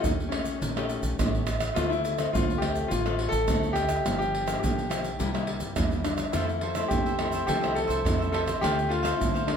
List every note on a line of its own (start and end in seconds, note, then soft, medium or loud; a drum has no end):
0.00 0.27 A3 medium
0.00 0.28 C#4 medium
0.00 0.08 D#4 medium
0.00 0.28 G4 medium
0.00 pandeiro medium
0.00 shaker medium
0.00 surdo loud
0.05 0.53 D#2 medium
0.05 0.59 A#2 medium
0.20 pandeiro soft
0.20 shaker soft
0.29 0.59 A3 medium
0.29 1.41 C#4 medium
0.29 0.59 C#4 medium
0.29 0.59 G4 medium
0.29 pandeiro medium
0.29 tamborim medium
0.45 pandeiro medium
0.45 shaker medium
0.61 0.98 A#1 medium
0.61 1.16 D#3 medium
0.61 pandeiro medium
0.61 shaker medium
0.61 surdo medium
0.76 1.14 A3 medium
0.76 1.15 C#4 medium
0.76 1.15 G4 medium
0.76 pandeiro soft
0.76 tamborim medium
0.76 shaker soft
0.90 pandeiro medium
0.90 shaker medium
1.03 1.16 A#1 medium
1.03 pandeiro medium
1.03 shaker medium
1.19 1.68 A1 medium
1.19 1.72 A3 medium
1.19 1.72 C#4 medium
1.19 1.72 G4 medium
1.19 pandeiro medium
1.19 tamborim medium
1.19 shaker medium
1.19 surdo loud
1.35 pandeiro soft
1.35 shaker soft
1.47 pandeiro medium
1.47 tamborim medium
1.47 shaker medium
1.60 pandeiro medium
1.60 tamborim medium
1.60 shaker medium
1.74 2.25 D2 medium
1.74 2.31 D3 medium
1.74 2.15 A3 medium
1.74 2.15 C4 medium
1.74 1.90 F4 medium
1.74 2.15 F4 medium
1.74 pandeiro medium
1.74 tamborim medium
1.74 shaker medium
1.74 surdo medium
1.90 2.34 E4 loud
1.90 pandeiro soft
1.90 shaker soft
2.05 pandeiro medium
2.05 shaker medium
2.18 2.28 A3 medium
2.18 2.29 C4 medium
2.18 2.29 F4 medium
2.18 pandeiro medium
2.18 tamborim medium
2.18 shaker medium
2.33 2.82 D2 medium
2.33 2.88 A2 medium
2.33 2.51 A3 medium
2.33 2.51 C4 medium
2.33 2.60 F4 medium
2.33 2.51 F4 medium
2.33 pandeiro medium
2.33 shaker medium
2.33 surdo loud
2.50 pandeiro soft
2.50 shaker soft
2.58 2.89 A3 medium
2.58 2.90 G4 medium
2.62 2.89 C4 soft
2.62 2.89 F4 medium
2.62 pandeiro medium
2.62 tamborim medium
2.75 pandeiro medium
2.75 shaker medium
2.88 3.28 A1 medium
2.88 3.45 D3 medium
2.88 3.29 F4 medium
2.88 pandeiro medium
2.88 shaker medium
2.88 surdo medium
3.06 3.44 A3 medium
3.06 3.44 C4 medium
3.06 3.44 F4 medium
3.06 pandeiro soft
3.06 tamborim medium
3.06 shaker soft
3.19 pandeiro medium
3.29 3.45 A1 medium
3.29 3.71 A4 loud
3.29 pandeiro medium
3.29 shaker medium
3.48 3.97 D2 medium
3.48 4.03 A2 medium
3.48 3.86 A3 medium
3.48 3.86 C4 medium
3.48 3.86 F4 medium
3.48 pandeiro medium
3.48 tamborim medium
3.48 shaker medium
3.48 surdo medium
3.63 pandeiro soft
3.63 shaker soft
3.73 4.17 G4 loud
3.73 pandeiro medium
3.73 tamborim medium
3.73 shaker medium
3.89 pandeiro medium
3.89 tamborim medium
3.89 shaker medium
4.05 4.54 G1 medium
4.05 4.60 G2 medium
4.05 4.44 F3 medium
4.05 4.44 A#3 medium
4.05 4.45 D4 medium
4.05 pandeiro medium
4.05 tamborim medium
4.05 shaker medium
4.05 surdo medium
4.19 4.58 G4 loud
4.19 pandeiro soft
4.19 shaker soft
4.35 pandeiro medium
4.46 4.86 F3 medium
4.46 4.86 A#3 medium
4.46 4.86 D4 medium
4.46 pandeiro medium
4.46 tamborim medium
4.46 shaker medium
4.59 5.11 B1 medium
4.59 5.17 D3 medium
4.59 5.71 G4 medium
4.64 pandeiro medium
4.64 shaker medium
4.64 surdo loud
4.78 pandeiro soft
4.78 shaker soft
4.89 5.09 F3 medium
4.89 5.09 A#3 medium
4.89 5.09 D4 medium
4.89 pandeiro medium
4.89 tamborim medium
4.89 shaker medium
5.04 pandeiro medium
5.04 shaker medium
5.19 5.56 C2 medium
5.19 5.74 C3 medium
5.19 5.29 G3 medium
5.19 5.29 A#3 medium
5.19 5.30 E4 medium
5.19 pandeiro medium
5.19 shaker medium
5.19 surdo medium
5.34 5.72 G3 medium
5.34 5.73 A#3 medium
5.34 5.73 E4 medium
5.34 pandeiro soft
5.34 tamborim medium
5.34 shaker soft
5.47 pandeiro medium
5.60 5.74 G2 medium
5.60 pandeiro medium
5.60 shaker medium
5.76 6.26 E2 medium
5.76 6.31 G2 soft
5.76 6.14 G3 medium
5.76 6.14 A#3 medium
5.76 6.14 E4 medium
5.76 pandeiro medium
5.76 tamborim medium
5.76 shaker medium
5.76 surdo loud
5.91 pandeiro soft
5.91 shaker soft
6.04 6.34 D4 medium
6.04 pandeiro medium
6.04 tamborim medium
6.04 shaker medium
6.18 pandeiro medium
6.18 tamborim medium
6.18 shaker medium
6.32 6.83 F2 medium
6.32 6.89 F3 medium
6.32 6.62 A3 medium
6.32 6.62 C4 medium
6.32 6.87 E4 medium
6.32 6.47 F4 medium
6.32 6.48 A4 medium
6.32 6.48 C5 medium
6.32 pandeiro medium
6.32 tamborim medium
6.32 shaker medium
6.32 surdo medium
6.36 6.62 E4 medium
6.36 6.49 E5 medium
6.49 muted cavaquinho stroke soft
6.49 pandeiro soft
6.49 shaker soft
6.61 6.76 F4 soft
6.61 6.76 A4 soft
6.61 6.75 C5 soft
6.61 6.74 E5 medium
6.61 pandeiro medium
6.75 7.15 A3 medium
6.75 7.15 C4 medium
6.75 7.16 E4 medium
6.75 7.05 A4 medium
6.75 7.04 C5 medium
6.75 7.04 E5 medium
6.75 pandeiro medium
6.75 tamborim medium
6.75 shaker medium
6.88 7.40 F2 medium
6.88 7.46 C3 medium
6.88 7.45 G4 medium
6.88 pandeiro medium
6.88 shaker medium
6.88 surdo loud
7.06 7.19 A4 soft
7.06 7.20 C5 soft
7.06 7.19 E5 soft
7.06 pandeiro soft
7.06 shaker soft
7.19 7.58 A3 medium
7.19 7.58 C4 medium
7.19 7.58 E4 medium
7.19 7.33 F4 soft
7.19 7.33 A4 soft
7.19 7.32 C5 medium
7.19 7.31 E5 medium
7.19 pandeiro medium
7.19 tamborim medium
7.32 7.47 A4 medium
7.32 7.47 C5 medium
7.32 7.47 E5 medium
7.32 pandeiro medium
7.32 shaker medium
7.47 7.85 C2 medium
7.47 8.03 F3 medium
7.47 7.61 F4 medium
7.47 7.77 G4 loud
7.47 7.62 A4 medium
7.47 7.61 C5 medium
7.47 7.60 E5 medium
7.47 pandeiro medium
7.47 shaker medium
7.47 surdo medium
7.61 8.01 A3 medium
7.61 8.01 C4 medium
7.61 8.02 E4 medium
7.61 7.74 A4 soft
7.61 7.74 C5 soft
7.61 7.74 E5 soft
7.61 pandeiro soft
7.61 tamborim medium
7.61 shaker soft
7.75 8.31 A4 medium
7.75 muted cavaquinho stroke soft
7.75 pandeiro medium
7.87 8.02 C2 medium
7.87 8.18 A4 medium
7.87 8.17 C5 medium
7.87 8.17 E5 medium
7.87 pandeiro medium
7.87 shaker medium
8.04 8.54 F2 medium
8.04 8.60 C3 medium
8.04 8.58 A3 medium
8.04 8.58 C4 medium
8.04 8.59 E4 medium
8.04 pandeiro medium
8.04 tamborim medium
8.04 shaker medium
8.04 surdo loud
8.19 8.32 A4 soft
8.19 8.33 C5 soft
8.19 8.33 E5 soft
8.19 pandeiro soft
8.19 shaker soft
8.32 8.47 F4 medium
8.32 8.39 A4 medium
8.32 8.47 A4 medium
8.32 8.46 C5 medium
8.32 8.45 E5 medium
8.32 pandeiro medium
8.32 tamborim medium
8.46 8.62 A4 soft
8.46 8.61 C5 soft
8.46 8.61 E5 medium
8.46 pandeiro medium
8.46 tamborim medium
8.46 shaker medium
8.61 9.11 D2 medium
8.61 9.17 D3 medium
8.61 9.01 A3 medium
8.61 9.01 C4 medium
8.61 8.76 D4 medium
8.61 9.02 F4 medium
8.61 8.89 G4 loud
8.61 8.76 A4 medium
8.61 8.77 C5 medium
8.61 8.77 F5 medium
8.61 pandeiro medium
8.61 tamborim medium
8.61 shaker medium
8.61 surdo medium
8.79 muted cavaquinho stroke soft
8.79 pandeiro soft
8.79 shaker soft
8.89 9.04 D4 soft
8.89 9.20 F4 medium
8.89 9.03 A4 soft
8.89 9.03 C5 soft
8.89 9.02 F5 medium
8.89 pandeiro medium
9.03 9.43 A3 medium
9.03 9.44 C4 medium
9.03 9.44 F4 medium
9.03 9.33 A4 medium
9.03 9.33 C5 medium
9.03 9.32 F5 medium
9.03 pandeiro medium
9.03 tamborim medium
9.03 shaker medium
9.18 9.57 D2 medium
9.18 9.57 A2 medium
9.18 9.49 E4 medium
9.18 pandeiro medium
9.18 shaker medium
9.18 surdo loud
9.34 9.47 A4 soft
9.34 9.47 C5 soft
9.34 9.47 F5 soft
9.34 pandeiro soft
9.34 shaker soft
9.47 9.57 A3 medium
9.47 9.57 C4 medium
9.47 9.57 D4 medium
9.47 9.57 D4 soft
9.47 9.57 F4 medium
9.47 9.57 A4 soft
9.47 9.57 C5 soft
9.47 9.57 F5 medium
9.47 pandeiro medium
9.47 tamborim medium